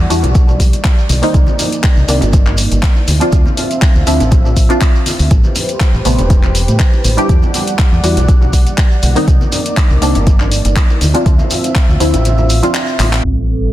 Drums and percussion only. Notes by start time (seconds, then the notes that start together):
0.10 open hi-hat, shekere
0.23 closed hi-hat, low conga, shekere
0.35 kick, closed hi-hat, high conga, shekere
0.48 low conga, shekere
0.60 kick, open hi-hat, shekere
0.73 closed hi-hat, high conga, shekere
0.84 kick, clap, closed hi-hat, shekere
0.99 shekere
1.09 open hi-hat, high conga, shekere
1.23 open hi-hat, shekere
1.34 kick, closed hi-hat, shekere
1.47 high conga, shekere
1.59 open hi-hat, low conga, shekere
1.72 closed hi-hat, shekere
1.84 kick, clap, closed hi-hat, shekere
1.97 high conga, shekere
2.08 open hi-hat, shekere
2.21 closed hi-hat, low conga, shekere
2.33 kick, closed hi-hat, high conga, shekere
2.46 clap, low conga, shekere
2.57 open hi-hat, shekere
2.72 closed hi-hat, high conga, shekere
2.83 kick, clap, closed hi-hat, shekere
2.96 high bongo, shekere
3.08 open hi-hat, high conga, shekere
3.21 closed hi-hat, shekere
3.32 kick, closed hi-hat, shekere
3.46 high conga, shekere
3.57 open hi-hat, low conga, shekere
3.71 closed hi-hat, shekere
3.82 kick, clap, closed hi-hat, shekere
3.95 high conga, shekere
4.07 open hi-hat, shekere
4.20 closed hi-hat, low conga, shekere
4.31 kick, closed hi-hat, high conga, shekere
4.45 low conga, shekere
4.57 kick, open hi-hat, shekere
4.69 closed hi-hat, high bongo, high conga, shekere
4.81 kick, clap, closed hi-hat, shekere
4.96 shekere
5.06 open hi-hat, high conga, shekere
5.19 open hi-hat, shekere
5.31 kick, closed hi-hat, shekere
5.44 high conga, shekere
5.55 open hi-hat, low conga, shekere
5.69 closed hi-hat, shekere
5.80 kick, clap, closed hi-hat, shekere
5.94 high conga, shekere
6.05 open hi-hat, shekere
6.18 closed hi-hat, low conga, shekere
6.30 kick, closed hi-hat, high conga, shekere
6.43 clap, low conga, shekere
6.55 open hi-hat, shekere
6.68 closed hi-hat, high conga, shekere
6.80 kick, clap, closed hi-hat, shekere
6.93 high bongo, shekere
7.04 open hi-hat, high conga, shekere
7.18 closed hi-hat, shekere
7.29 kick, closed hi-hat, shekere
7.43 high conga, shekere
7.54 open hi-hat, low conga, shekere
7.67 closed hi-hat, shekere
7.79 kick, clap, closed hi-hat, shekere
7.92 high conga, shekere
8.04 open hi-hat, shekere
8.17 closed hi-hat, low conga, shekere
8.28 kick, closed hi-hat, high conga, shekere
8.42 low conga, shekere
8.53 kick, open hi-hat, shekere
8.67 closed hi-hat, high conga, shekere
8.78 kick, clap, closed hi-hat, shekere
8.92 shekere
9.02 open hi-hat, high conga, shekere
9.16 open hi-hat, shekere
9.28 kick, closed hi-hat, shekere
9.41 high conga, shekere
9.52 open hi-hat, low conga, shekere
9.66 closed hi-hat, shekere
9.77 kick, clap, closed hi-hat, shekere
9.91 high conga, shekere
10.02 open hi-hat, shekere
10.15 closed hi-hat, low conga, shekere
10.27 kick, closed hi-hat, high conga, shekere
10.40 clap, low conga, shekere
10.52 open hi-hat, shekere
10.65 closed hi-hat, high conga, shekere
10.76 kick, clap, closed hi-hat, shekere
10.90 high bongo, shekere
11.01 open hi-hat, high conga, shekere
11.15 closed hi-hat, shekere
11.26 kick, closed hi-hat, shekere
11.39 high conga, shekere
11.51 open hi-hat, low conga, shekere
11.64 closed hi-hat, high bongo, shekere
11.75 kick, clap, closed hi-hat, shekere
11.90 high conga, shekere
12.00 open hi-hat, shekere
12.13 closed hi-hat, low conga, shekere
12.25 closed hi-hat, high conga, shekere
12.38 low conga, shekere
12.50 open hi-hat, shekere
12.63 closed hi-hat, high conga, shekere
12.75 clap, closed hi-hat, shekere
12.87 shekere
12.99 clap, open hi-hat, high conga, shekere
13.13 clap, open hi-hat, shekere
13.24 crash
13.49 open hi-hat